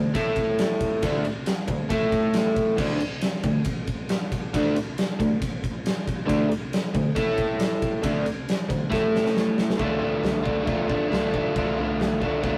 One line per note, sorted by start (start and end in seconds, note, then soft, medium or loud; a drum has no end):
0.00 0.11 D3 medium
0.00 0.11 A3 medium
0.14 1.01 A3 medium
0.14 1.02 E4 loud
0.14 1.02 A4 loud
0.14 kick loud
0.14 ride loud
0.36 kick medium
0.36 ride medium
0.59 snare loud
0.59 ride loud
0.81 kick medium
0.81 ride medium
1.02 1.24 D3 loud
1.02 1.24 A3 loud
1.02 1.25 D4 loud
1.02 kick loud
1.02 ride loud
1.25 muted overdriven electric guitar stroke medium
1.25 ride medium
1.46 snare loud
1.46 ride loud
1.68 1.86 D3 medium
1.68 1.86 A3 medium
1.68 kick medium
1.68 ride medium
1.89 2.77 A3 loud
1.89 2.77 E4 medium
1.89 2.77 A4 loud
1.89 kick loud
1.89 ride medium
2.12 kick medium
2.12 ride medium
2.34 snare loud
2.34 ride loud
2.56 kick medium
2.56 ride medium
2.77 2.98 D3 loud
2.77 2.99 A3 loud
2.77 3.00 D4 loud
2.77 kick loud
2.77 crash loud
3.00 muted overdriven electric guitar stroke medium
3.00 ride medium
3.21 snare loud
3.21 ride medium
3.43 3.61 D3 medium
3.43 3.61 A3 medium
3.43 kick medium
3.43 ride medium
3.65 kick loud
3.65 ride medium
3.87 kick medium
3.87 ride medium
4.09 snare loud
4.09 ride loud
4.32 kick medium
4.32 ride medium
4.53 4.75 D3 loud
4.53 4.75 A3 loud
4.53 4.75 D4 loud
4.53 kick loud
4.53 ride loud
4.76 muted overdriven electric guitar stroke medium
4.76 ride medium
4.98 snare loud
4.98 ride loud
5.19 5.37 D3 medium
5.19 5.37 A3 medium
5.19 kick medium
5.19 ride medium
5.42 kick loud
5.42 ride loud
5.64 kick medium
5.64 ride medium
5.86 snare loud
5.86 ride loud
6.08 kick medium
6.08 ride medium
6.26 6.48 D3 loud
6.26 6.49 A3 loud
6.26 6.50 D4 loud
6.26 kick loud
6.26 ride loud
6.50 muted overdriven electric guitar stroke medium
6.50 ride medium
6.73 snare loud
6.73 ride loud
6.94 7.12 D3 medium
6.94 7.12 A3 medium
6.94 kick medium
6.94 ride medium
7.15 8.02 A3 medium
7.15 8.03 E4 loud
7.15 8.04 A4 loud
7.15 kick loud
7.15 ride medium
7.37 kick medium
7.37 ride medium
7.60 snare loud
7.60 ride loud
7.82 kick medium
7.82 ride medium
8.02 8.23 D3 medium
8.02 8.25 A3 loud
8.02 8.25 D4 loud
8.02 kick loud
8.02 ride loud
8.24 muted overdriven electric guitar stroke medium
8.24 ride medium
8.49 snare loud
8.49 ride medium
8.69 8.87 D3 medium
8.69 8.87 A3 medium
8.69 kick medium
8.69 ride medium
8.90 9.77 A3 medium
8.90 9.78 E4 loud
8.90 9.79 A4 loud
8.90 kick loud
8.90 snare medium
9.15 snare medium
9.26 snare medium
9.37 snare medium
9.58 snare loud
9.70 snare loud
9.78 10.63 D3 medium
9.78 10.04 A3 medium
9.78 10.01 D4 loud
9.78 kick loud
9.78 floor tom medium
9.82 9.98 F4 medium
9.98 10.44 D4 medium
9.98 10.43 F4 medium
9.98 floor tom medium
10.04 10.48 A3 medium
10.24 snare loud
10.24 floor tom medium
10.43 10.67 D4 medium
10.43 10.69 F4 medium
10.43 kick medium
10.43 floor tom medium
10.48 10.65 A3 soft
10.64 11.08 D3 medium
10.64 10.92 A3 medium
10.64 10.89 D4 medium
10.64 kick loud
10.64 floor tom medium
10.69 10.87 F4 medium
10.88 11.12 D4 medium
10.88 11.13 F4 medium
10.88 kick medium
10.88 floor tom medium
10.93 11.10 A3 medium
11.08 11.53 D3 medium
11.08 11.35 A3 medium
11.08 11.33 D4 medium
11.08 floor tom medium
11.13 11.30 F4 medium
11.13 snare loud
11.31 11.57 D4 medium
11.31 11.58 F4 medium
11.31 kick medium
11.31 floor tom medium
11.35 11.55 A3 medium
11.54 12.40 D3 medium
11.54 11.80 A3 medium
11.54 11.78 D4 loud
11.54 kick loud
11.54 floor tom medium
11.59 11.76 F4 medium
11.76 12.23 D4 medium
11.76 12.20 F4 medium
11.76 floor tom medium
11.81 12.25 A3 medium
12.00 snare loud
12.00 floor tom medium
12.20 12.43 D4 medium
12.20 12.45 F4 medium
12.20 kick medium
12.20 floor tom medium
12.25 12.42 A3 medium
12.41 12.58 D3 medium
12.41 12.58 A3 medium
12.41 12.58 D4 medium
12.41 kick loud
12.41 floor tom medium
12.45 12.58 F4 loud